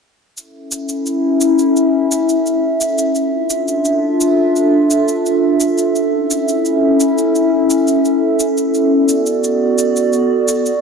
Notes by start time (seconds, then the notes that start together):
0.35 C#4 E4 A4 E5, shaker
0.72 shaker
0.89 shaker
1.06 shaker
1.41 shaker
1.59 shaker
1.76 shaker
2.12 shaker
2.29 shaker
2.46 shaker
2.81 shaker
2.98 shaker
3.15 D4 F4, shaker
3.50 shaker
3.68 shaker
3.85 shaker
4.21 shaker
4.56 shaker
4.91 shaker
5.08 shaker
5.26 shaker
5.60 shaker
5.78 shaker
5.95 C#4 E4, shaker
6.31 shaker
6.48 shaker
6.65 shaker
7.00 shaker
7.18 shaker
7.35 shaker
7.70 shaker
7.88 shaker
8.05 shaker
8.40 shaker
8.58 shaker
8.74 B3 F#4 D5, shaker
9.09 shaker
9.26 shaker
9.44 shaker
9.78 shaker
9.96 shaker
10.13 shaker
10.48 shaker
10.66 shaker